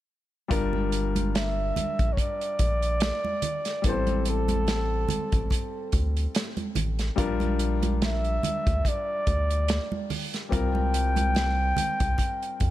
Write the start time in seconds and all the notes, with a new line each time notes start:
0.48 G1 G3 D4 F4 A#4, kick, closed hi-hat, muted conga
0.73 high conga
0.92 closed hi-hat
1.16 closed hi-hat, high conga
1.35 E5, snare, closed hi-hat
1.76 A#1, closed hi-hat, high conga, low conga
1.99 A#1, kick, closed hi-hat
2.13 C#5
2.17 D5, kick, closed hi-hat
2.41 closed hi-hat
2.59 A#1, kick, closed hi-hat, muted conga
2.82 closed hi-hat
3.00 snare, closed hi-hat
3.25 high conga
3.42 closed hi-hat, muted conga, low conga
3.65 snare, closed hi-hat
3.82 A1 G3 B3 E4 A4, kick, closed hi-hat
3.87 C4 C5
4.07 closed hi-hat, high conga
4.25 closed hi-hat
4.29 A4
4.48 closed hi-hat, high conga
4.67 snare, closed hi-hat, muted conga
5.08 A1, closed hi-hat, high conga, low conga
5.32 A1, kick, closed hi-hat
5.50 kick, closed hi-hat, muted conga
5.92 D2, kick, closed hi-hat, muted conga
6.17 closed hi-hat
6.35 snare, closed hi-hat
6.57 closed hi-hat, high conga
6.75 A1, closed hi-hat, muted conga, low conga
6.99 snare, closed hi-hat
7.16 A#1 G3 D4 F4 A#4, kick, closed hi-hat, muted conga
7.40 closed hi-hat, high conga
7.59 closed hi-hat, muted conga
7.82 closed hi-hat, high conga
8.02 E5, snare, closed hi-hat
8.24 closed hi-hat
8.43 D2, closed hi-hat, high conga, low conga
8.67 D2, kick, closed hi-hat
8.85 D5, kick, closed hi-hat, muted conga
9.27 D2, kick, closed hi-hat
9.50 closed hi-hat
9.68 snare, closed hi-hat
9.92 high conga
10.10 open hi-hat, low conga
10.34 snare, closed hi-hat
10.49 C2 G3 C4 F4 A#4, kick, closed hi-hat, muted conga
10.54 G5
10.75 high conga
10.94 closed hi-hat
11.16 closed hi-hat, high conga
11.35 snare, closed hi-hat, muted conga
11.76 C2, closed hi-hat, high conga, low conga
12.00 C2, kick, closed hi-hat
12.18 kick, closed hi-hat, muted conga
12.42 closed hi-hat
12.60 F2, kick, closed hi-hat, muted conga